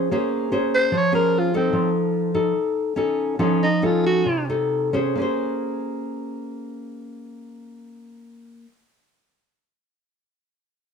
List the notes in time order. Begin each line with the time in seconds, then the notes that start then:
0.11 A#3 C#4 G#4 C5
0.52 C#4 G#4 C5
0.74 C5
0.92 F3
0.97 C#5
1.12 C#4 G#4 A#4 C5
1.39 F4
1.54 C4 D#4 A4
1.73 F3
2.34 D#4 A4
2.96 C#4 D#4 A4
3.39 F3 C#4 D#4 A4
3.63 D#4
3.82 C#4 D#4 F4 A4
4.06 F#4
4.26 C3
4.49 D#4 A4
4.93 C#4 G#4 C5
5.15 A#3 C#4
5.20 G#4 C5